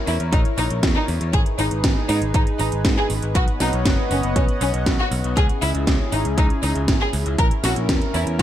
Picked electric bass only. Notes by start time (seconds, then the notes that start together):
0.07 E2
0.20 E2
0.33 A#1
0.58 A#1
0.70 A#1
0.83 E2
1.08 E2
1.21 E2
1.33 G#1
1.59 G#1
1.71 G#1
1.84 G#1
2.09 G#2
2.22 G#1
2.34 G#1
2.59 G#1
2.72 G#1
2.85 G#2
3.10 G#1
3.22 G#1
3.35 B1
3.60 B1
3.73 B1
3.86 F#1
4.11 F#1
4.23 F#1
4.36 B1
4.61 B1
4.74 B1
4.86 B1
5.11 B1
5.24 B1
5.37 C#2
5.62 C#2
5.75 C#2
5.87 C#2
6.12 G#1
6.25 C#2
6.38 C#2
6.63 C#2
6.75 C#2
6.88 G#1
7.13 C#2
7.26 C#2
7.38 A#1
7.64 A#1
7.76 A#1
7.89 E2
8.14 E2
8.27 E2